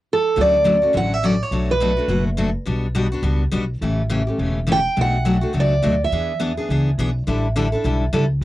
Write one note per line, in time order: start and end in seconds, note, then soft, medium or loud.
0.13 0.40 A4 medium
0.36 0.83 D2 medium
0.36 0.56 D3 medium
0.36 0.56 F#3 soft
0.36 0.56 A3 medium
0.36 0.56 C#4 soft
0.36 0.56 F#4 medium
0.41 0.92 D5 medium
0.64 0.76 D3 medium
0.64 0.76 F#3 medium
0.64 0.76 A3 medium
0.64 0.76 C#4 medium
0.64 0.76 F#4 medium
0.82 0.93 A3 soft
0.82 0.93 C#4 soft
0.82 0.93 F#4 soft
0.93 1.40 A1 medium
0.93 1.13 D3 soft
0.93 1.13 F#3 medium
0.93 1.13 A3 medium
0.93 1.13 C#4 soft
0.93 1.13 F#4 medium
0.97 1.14 F#5 medium
1.14 1.25 E5 medium
1.23 1.34 D3 medium
1.23 1.34 F#3 medium
1.23 1.34 A3 medium
1.23 1.34 C#4 medium
1.23 1.34 F#4 medium
1.23 1.43 D5 medium
1.43 1.71 C#5 medium
1.51 1.98 B1 medium
1.51 1.71 B2 medium
1.51 1.71 F#3 medium
1.51 1.71 A3 medium
1.51 1.72 D4 medium
1.51 1.72 F#4 medium
1.71 2.24 B4 medium
1.81 1.91 B2 medium
1.81 1.91 F#3 medium
1.81 1.92 A3 medium
1.81 1.92 D4 medium
1.81 1.92 F#4 medium
1.97 2.08 A3 soft
1.97 2.08 D4 soft
1.97 2.08 F#4 soft
2.08 2.55 F#1 medium
2.08 2.28 B2 medium
2.08 2.28 F#3 medium
2.08 2.29 A3 medium
2.08 2.29 D4 medium
2.08 2.29 F#4 medium
2.37 2.48 B2 medium
2.37 2.48 F#3 medium
2.37 2.49 A3 medium
2.37 2.49 D4 medium
2.37 2.49 F#4 medium
2.65 3.13 B1 medium
2.65 2.85 B2 medium
2.65 2.86 G3 medium
2.65 2.86 B3 medium
2.65 2.86 D4 medium
2.65 2.86 F#4 medium
2.95 3.06 B2 medium
2.95 3.06 G3 medium
2.95 3.06 B3 medium
2.95 3.06 D4 medium
2.95 3.06 F#4 medium
3.12 3.22 B3 soft
3.12 3.23 D4 soft
3.12 3.23 F#4 medium
3.23 3.48 C#2 medium
3.23 3.43 B2 soft
3.23 3.43 G3 medium
3.23 3.43 B3 medium
3.23 3.43 D4 medium
3.23 3.43 F#4 medium
3.52 3.78 B1 medium
3.52 3.63 B2 medium
3.52 3.63 G3 medium
3.52 3.63 B3 medium
3.52 3.64 D4 medium
3.52 3.64 F#4 medium
3.82 4.28 A1 medium
3.82 4.01 C#3 medium
3.82 4.01 E3 medium
3.82 4.01 A3 medium
3.82 4.01 C#4 medium
3.82 4.02 G4 medium
4.10 4.21 C#3 medium
4.10 4.21 E3 medium
4.10 4.21 A3 medium
4.10 4.21 C#4 medium
4.10 4.21 G4 medium
4.27 4.38 A3 soft
4.27 4.38 C#4 soft
4.27 4.38 G4 soft
4.38 4.85 E1 medium
4.38 4.58 C#3 soft
4.38 4.58 E3 medium
4.38 4.58 A3 medium
4.38 4.59 C#4 medium
4.38 4.59 G4 medium
4.66 4.78 C#3 medium
4.66 4.78 E3 medium
4.66 4.78 A3 medium
4.66 4.79 C#4 medium
4.66 4.79 G4 medium
4.71 4.99 G5 medium
4.96 5.43 B1 medium
4.96 5.16 B2 medium
4.96 5.16 F#3 medium
4.96 5.16 A3 medium
4.96 5.16 D4 medium
4.96 5.16 F#4 medium
5.01 5.53 F#5 medium
5.25 5.36 B2 medium
5.25 5.36 F#3 medium
5.25 5.36 A3 medium
5.25 5.37 D4 medium
5.25 5.37 F#4 medium
5.41 5.52 A3 soft
5.41 5.53 D4 soft
5.41 5.53 F#4 soft
5.53 5.79 C#2 medium
5.53 5.73 B2 soft
5.53 5.73 F#3 medium
5.53 5.73 A3 medium
5.53 5.74 D4 medium
5.53 5.73 F#4 medium
5.60 6.04 D5 medium
5.82 6.07 D2 medium
5.82 5.94 B2 medium
5.82 5.94 F#3 medium
5.82 5.94 A3 medium
5.82 5.94 D4 medium
5.82 5.94 F#4 medium
6.04 6.40 E5 medium
6.11 6.58 E2 medium
6.11 6.31 E3 medium
6.11 6.32 B3 medium
6.11 6.32 D4 medium
6.11 6.32 G#4 medium
6.39 6.51 E3 medium
6.39 6.51 B3 medium
6.39 6.51 D4 medium
6.39 6.52 G#4 medium
6.57 6.70 B3 soft
6.57 6.69 D4 soft
6.57 6.69 G#4 soft
6.69 6.94 C#2 medium
6.69 6.89 E3 medium
6.69 6.89 B3 medium
6.69 6.90 D4 medium
6.69 6.90 G#4 medium
6.98 7.23 B1 medium
6.98 7.09 E3 medium
6.98 7.10 B3 medium
6.98 7.10 D4 medium
6.98 7.10 G#4 loud
7.27 7.73 A1 medium
7.27 7.46 D3 medium
7.27 7.47 G3 medium
7.27 7.47 D4 medium
7.27 7.47 E4 medium
7.27 7.47 A4 medium
7.56 7.67 D3 medium
7.56 7.67 G3 medium
7.56 7.67 D4 medium
7.56 7.67 E4 medium
7.56 7.67 A4 medium
7.72 7.84 D4 soft
7.72 7.84 E4 soft
7.72 7.84 A4 soft
7.84 8.09 B1 medium
7.84 8.04 D3 medium
7.84 8.04 G3 medium
7.84 8.04 D4 medium
7.84 8.04 E4 medium
7.84 8.05 A4 medium
8.13 8.38 C#2 medium
8.13 8.24 D3 medium
8.13 8.24 G3 medium
8.13 8.24 D4 medium
8.13 8.24 E4 medium
8.13 8.24 A4 medium